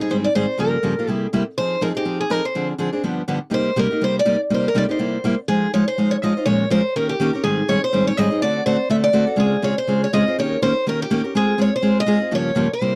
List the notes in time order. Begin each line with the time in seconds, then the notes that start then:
0.01 G3 C4 G#4
0.10 G#2 D#3 G3 C4 D#4 G#4 C5
0.24 D5
0.35 G#2 D#3 G3 C4 D#4 G#4 C5
0.57 G2 C#3 F3 A#3 F4 G4 A#4
0.83 G2 C#3 F3 A#3 F4 G4
0.99 F3 A#3 F4 G4
1.07 C3 G3 A#3 E4 G4 G#4
1.33 C3 G3 A#3 E4 G4
1.58 F3 C4 D#4 G#4 C5
1.81 F3 C4 D#4 G#4 A#4
1.95 C4 D#4 G4 G#4
2.05 F3 C4 D#4 G#4
2.21 G#4
2.30 F3 C4 D#4 G#4 A#4
2.45 C5
2.55 D3 F3 C4 D4 G#4
2.78 D3 F3 C4 D4 G#4
2.93 C4 D4 G#4
3.03 G2 D3 F3 B3 D4 G4
3.28 G2 D3 F3 B3 D4 G4
3.50 C3 G3 A#3 D#4 G4
3.54 C5
3.76 C3 G3 A#3 D#4 G4 A#4
3.91 A#3 D#4 G4
4.01 C3 G3 A#3 D#4 G4 C5
4.19 D5
4.25 C3 G3 A#3 D#4 G4
4.50 C3 G3 A#3 D#4 G4
4.54 C5
4.68 A#4
4.75 C3 G3 A#3 D#4 G4 D5
4.89 A#3 D#4 G4 C5
4.99 C3 G3 A#3 E4 G4
5.24 C3 G3 A#3 E4 G4
5.48 F3 G#3 D#4 F4 G#4 C5
5.73 F3 G#3 D#4 F4 C5 C#5
5.88 C5
5.98 F3 G#3 D#4 F4 C5
6.11 C#5
6.22 F3 G#3 D#4 F4 C5 D#5
6.37 D#4 F4 C5
6.46 A#2 F3 G#3 C#4 F4 A#4 C#5
6.70 A#2 F3 G#3 C#4 F4 A#4 C5
6.96 D#3 A#3 C#4 G4 A#4
7.09 G4
7.20 D#3 A#3 C#4 G4 A#4
7.33 C#4 G4 A#4
7.43 G#2 D#3 G3 C4 D#4 G#4
7.68 G#2 D#3 G3 C4 D#4 G#4 C#5
7.84 C5
7.93 G#2 D#3 G3 C4 D#4 G#4
8.07 C#5
8.17 G#2 D#3 G3 C4 D#4 G#4 D#5
8.30 G3 C4 D#4 G#4
8.42 D3 A3 C4 F#4 A4 D5
8.66 D3 A3 C4 F#4 A4 C5
8.90 D3 A3 C4 F#4 A4 E5
9.04 D5
9.13 D3 A3 C4 F#4 A4
9.27 C4 F#4 A4
9.36 C#3 G#3 C4 F4 G#4
9.62 C#3 G#3 C4 F4 G#4 C#5
9.78 C5
9.87 C#3 G#3 C4 F4 G#4
10.04 C#5
10.13 C#3 G#3 C4 F4 G#4 D#5
10.26 C4 F4 G#4
10.38 D#3 A#3 C#4 G4 A#4 C#5
10.62 D#3 A#3 C#4 G4 A#4 C5
10.86 D#3 A#3 C#4 G4 A#4
11.02 G4
11.10 D#3 A#3 C#4 G4 A#4
11.24 C#4 G4 A#4
11.35 G#3 C4 F4 G#4
11.58 G#3 C4 F4 G#4 C#5
11.76 C5
11.82 G#3 C4 F4 G#4
12.00 D#5
12.06 G#3 C4 F4 G#4
12.20 C4 F4 G#4
12.31 G2 C#3 F3 A#3 F4 G4 C#5
12.55 G2 C#3 F3 A#3 F4 G4
12.73 C5
12.81 C3 G3 A#3 E4 G4